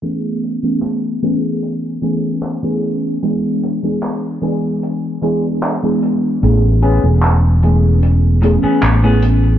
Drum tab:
HH |xxxxxxxx|xxxxxxxx|xxxxxxxx|
CP |--x---x-|--x---x-|--x---x-|